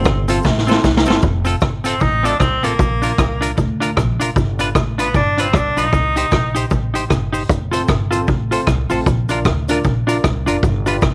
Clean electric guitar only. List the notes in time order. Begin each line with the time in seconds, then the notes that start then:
0.28 C4 F4 A4
0.44 muted clean electric guitar stroke
0.67 C4 F4 A4
1.07 C4 F4 A4
1.45 C4 F4 A4
1.84 C4 F4 A4
2.01 muted clean electric guitar stroke
2.23 C4 F4 A4
2.63 C4 F4 A4
3.02 D4 F4 A#4
3.41 D4 F4 A#4
3.56 muted clean electric guitar stroke
3.80 D4 F4 A#4
3.96 muted clean electric guitar stroke
4.20 D4 F4 A#4
4.59 D4 F4 B4
4.98 D4 F4 B4
5.14 muted clean electric guitar stroke
5.38 D4 F4 B4
5.77 D4 F4 B4
6.16 D#4 G4 C5
6.55 D#4 G4 C5
6.71 muted clean electric guitar stroke
6.94 D#4 G4 C5
7.09 muted clean electric guitar stroke
7.33 D#4 G4 C5
7.71 F4 A4 C5
8.11 F4 A4 C5
8.27 muted clean electric guitar stroke
8.51 F4 A4 C5
8.90 F4 A4 C5
9.29 D4 F4 A#4
9.69 D4 F4 A#4
9.85 muted clean electric guitar stroke
10.07 D4 F4 A#4
10.23 muted clean electric guitar stroke
10.46 D4 F4 A#4
10.86 D4 F4 B4